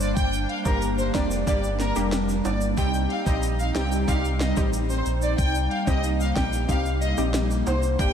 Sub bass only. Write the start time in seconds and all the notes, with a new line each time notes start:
Already playing: G1
0.17 G1
0.65 G1
1.15 F1
1.47 G1
1.96 F1
2.45 G1
2.78 C2
3.26 A#1
3.76 C2
4.08 C2
4.57 A1
5.06 A#1
5.38 C2
5.87 C2
6.36 A#1
6.69 C2
7.18 A#1
7.67 C2
7.99 G1